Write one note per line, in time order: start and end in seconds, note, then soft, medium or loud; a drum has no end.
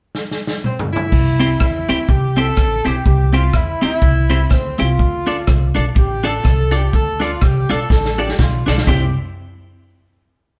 0.15 snare medium
0.32 snare medium
0.47 snare medium
0.64 0.78 C4 medium
0.64 mid tom medium
0.79 floor tom medium
0.93 2.05 E4 loud
0.93 floor tom medium
1.12 1.53 C2 medium
1.12 kick loud
1.12 crash medium
1.40 1.49 C4 medium
1.40 1.49 E4 medium
1.40 1.49 G4 medium
1.40 1.49 C5 medium
1.40 closed hi-hat medium
1.60 1.85 E2 medium
1.60 kick medium
1.60 cross-stick loud
1.60 closed hi-hat medium
1.89 2.06 D2 medium
1.89 1.98 C4 medium
1.89 1.98 E4 medium
1.89 1.98 G4 medium
1.89 1.98 C5 medium
1.89 closed hi-hat medium
2.08 2.50 C2 medium
2.08 2.36 G4 medium
2.08 muted clean electric guitar stroke soft
2.08 kick loud
2.08 closed hi-hat medium
2.37 2.46 C4 medium
2.37 2.46 E4 medium
2.37 2.46 G4 loud
2.37 2.86 A4 loud
2.37 2.46 C5 medium
2.37 closed hi-hat medium
2.56 2.82 A1 medium
2.56 muted clean electric guitar stroke soft
2.56 kick loud
2.56 cross-stick medium
2.56 closed hi-hat medium
2.85 3.03 B1 medium
2.85 2.94 C4 medium
2.85 2.94 E4 medium
2.85 2.94 G4 medium
2.85 3.05 G4 loud
2.85 2.95 C5 medium
2.85 closed hi-hat medium
3.06 3.47 C2 loud
3.06 3.33 G4 medium
3.06 kick loud
3.06 closed hi-hat medium
3.33 3.42 C4 medium
3.33 3.43 E4 medium
3.33 3.54 F4 medium
3.33 3.43 G4 medium
3.33 3.43 C5 medium
3.33 closed hi-hat medium
3.53 3.79 E2 medium
3.53 3.82 E4 medium
3.53 kick loud
3.53 cross-stick loud
3.53 closed hi-hat medium
3.82 3.99 D2 medium
3.82 3.91 C4 medium
3.82 3.91 E4 medium
3.82 4.47 E4 loud
3.82 3.91 G4 medium
3.82 3.91 C5 medium
3.82 closed hi-hat medium
4.02 4.44 C2 medium
4.02 muted clean electric guitar stroke soft
4.02 kick loud
4.02 closed hi-hat medium
4.30 4.39 C4 loud
4.30 4.39 E4 loud
4.30 4.40 G4 medium
4.30 4.40 C5 loud
4.30 closed hi-hat medium
4.49 4.76 D2 medium
4.49 4.80 C4 medium
4.49 muted clean electric guitar stroke soft
4.49 kick loud
4.49 cross-stick medium
4.49 closed hi-hat medium
4.78 4.97 C2 medium
4.78 4.88 C4 medium
4.78 4.88 E4 medium
4.78 5.74 F4 medium
4.78 4.88 G4 medium
4.78 4.88 C5 medium
4.78 closed hi-hat medium
4.99 5.41 D2 medium
4.99 kick loud
4.99 closed hi-hat medium
5.26 5.36 D4 medium
5.26 5.36 F4 medium
5.26 5.36 A4 medium
5.26 5.36 D5 medium
5.26 closed hi-hat medium
5.47 5.73 C2 medium
5.47 kick loud
5.47 cross-stick loud
5.47 closed hi-hat medium
5.75 5.93 B1 medium
5.75 5.84 D4 medium
5.75 5.85 F4 medium
5.75 5.85 A4 medium
5.75 5.85 D5 medium
5.75 closed hi-hat medium
5.95 6.38 A1 medium
5.95 6.24 G4 medium
5.95 muted clean electric guitar stroke soft
5.95 kick loud
5.95 closed hi-hat medium
6.24 6.33 D4 loud
6.24 6.33 F4 medium
6.24 6.33 A4 loud
6.24 6.74 A4 loud
6.24 6.34 D5 medium
6.24 closed hi-hat medium
6.43 6.86 C2 medium
6.43 muted clean electric guitar stroke soft
6.43 kick loud
6.43 cross-stick medium
6.43 closed hi-hat medium
6.71 6.81 D4 medium
6.71 6.81 F4 medium
6.71 6.81 A4 medium
6.71 6.81 D5 medium
6.71 closed hi-hat medium
6.75 6.93 G4 medium
6.93 7.35 D2 loud
6.93 7.20 A4 medium
6.93 kick medium
6.93 closed hi-hat medium
7.20 7.29 D4 medium
7.20 7.30 F4 medium
7.20 7.42 F4 medium
7.20 7.30 A4 medium
7.20 7.30 D5 medium
7.20 closed hi-hat medium
7.41 7.67 C2 medium
7.41 7.71 G4 medium
7.41 kick loud
7.41 cross-stick loud
7.41 closed hi-hat medium
7.70 7.88 B1 medium
7.70 7.79 D4 medium
7.70 7.79 F4 medium
7.70 7.79 A4 medium
7.70 7.90 A4 loud
7.70 7.79 D5 loud
7.70 cross-stick medium
7.70 closed hi-hat medium
7.90 8.32 A1 medium
7.90 8.17 A4 medium
7.90 muted clean electric guitar stroke soft
7.90 kick loud
7.90 snare medium
8.05 snare soft
8.18 8.27 D4 medium
8.18 8.27 F4 medium
8.18 8.39 G4 medium
8.18 8.28 A4 medium
8.18 8.28 D5 medium
8.29 snare medium
8.39 8.64 B1 medium
8.39 8.78 F4 medium
8.39 muted clean electric guitar stroke soft
8.39 kick loud
8.39 snare medium
8.66 8.85 B1 medium
8.66 8.76 D4 medium
8.66 8.76 F4 medium
8.66 8.76 A4 medium
8.66 8.76 D5 medium
8.66 snare loud
8.78 snare medium
8.87 9.14 C2 medium
8.87 9.04 C4 medium
8.87 9.05 E4 medium
8.87 9.05 G4 medium
8.87 9.14 G4 medium
8.87 9.05 C5 medium
8.87 kick loud
8.87 floor tom medium
8.87 crash medium